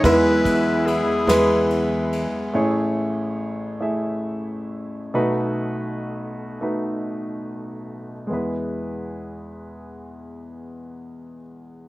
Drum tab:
RD |xxxxxx|------|------|------|
SD |---o--|------|------|------|
BD |oo----|------|------|------|